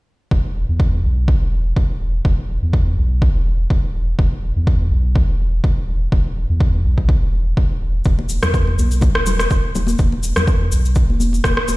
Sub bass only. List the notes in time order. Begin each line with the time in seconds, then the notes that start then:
0.31 E1
0.69 E2
1.04 B1
1.41 E1
1.76 E1
2.00 E1
2.25 E1
2.62 E2
2.98 B1
3.35 E1
3.70 E1
3.94 E1
4.19 E1
4.56 E2
4.91 B1
5.28 E1
5.64 E1
5.88 E1
6.12 E1
6.49 E2
6.85 B1
7.22 E1
7.57 E1
7.81 E1
8.05 E1
8.43 E2
8.78 B1
9.15 E1
9.51 E1
9.75 E1
9.99 E1
10.37 E2
10.72 B1
11.09 E1
11.44 E1
11.68 E1